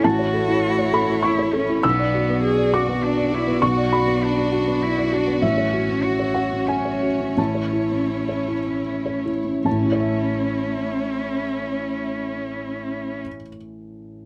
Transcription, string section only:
\new Staff \with { instrumentName = "String section" } { \time 3/4 \key a \major \tempo 4 = 93 << { cis''2. | d''2.~ | d''2. | cis''2.~ |
cis''2. | cis''2.~ | cis''2. | } \\ { <a e'>2. | <fis fis'>2.~ | <fis fis'>2.~ | <fis fis'>2. |
<a e'>2. | <a e'>2.~ | <a e'>2. | } >> }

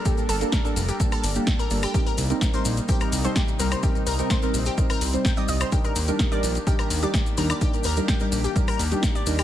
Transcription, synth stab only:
\new Staff \with { instrumentName = "Synth stab" } { \time 4/4 \key c \dorian \tempo 4 = 127 <g bes d' a'>8 r16 <g bes d' a'>8 <g bes d' a'>16 r8 <g bes d' a'>8 r16 <g bes d' g'>16 r8 <g bes d' a'>16 r16 | <g c' ees' bes'>8 r16 <g c' ees' bes'>8 <g c' ees' bes'>16 r8 <g c' ees' bes'>8 r16 <g c' ees' a'>16 r8 <g c' ees' bes'>16 r16 | <g c' ees' bes'>8 r16 <g c' ees' bes'>8 <g c' ees' bes'>16 r8 <g c' ees' bes'>8 r16 <g c' ees' c''>16 r16 <g c' ees' d''>8. | <g d' ees' bes'>8 r16 <g d' ees' bes'>8 <g d' ees' bes'>16 r8 <g d' ees' bes'>8 r16 <g d' ees' g'>16 r8 <g d' ees' bes'>16 r16 |
<g d' ees' bes'>8 r16 <g d' ees' bes'>8 <g d' ees' bes'>16 r8 <g d' ees' bes'>8 r16 <g d' ees' g'>16 r8 <g d' ees' bes'>16 r16 | }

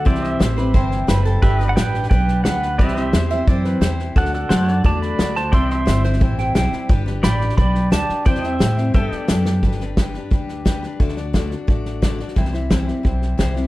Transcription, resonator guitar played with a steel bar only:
\new Staff \with { instrumentName = "Resonator guitar played with a steel bar" } { \time 4/4 \key g \major \tempo 4 = 176 r4. b'8 c''4 b'8 a'8 | g'8. r2. r16 | r4. e''8 d''8 b'8 c''8 r8 | r1 |
r4. c''4 g''8 g''4~ | g''8. r2. r16 | r1 | r1 |
r1 | r1 | }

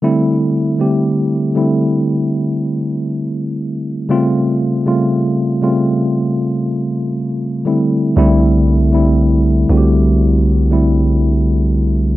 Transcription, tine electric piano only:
\new Staff \with { instrumentName = "Tine electric piano" } { \time 4/4 \key c \major \tempo 4 = 59 <d g a c' e'>8. <d g a c' g'>8. <d g a c' e'>4.~ <d g a c' e'>16 r8. | <cis g a bis eis'>8. <cis g a bis eis'>8. <cis g a bis eis'>4.~ <cis g a bis eis'>16 r16 <d g a c' e'>8 | <d g a c' e'>8. <d g a c' e'>8. <d g a c' fis' g'>4 <d g a c' e'>4. | }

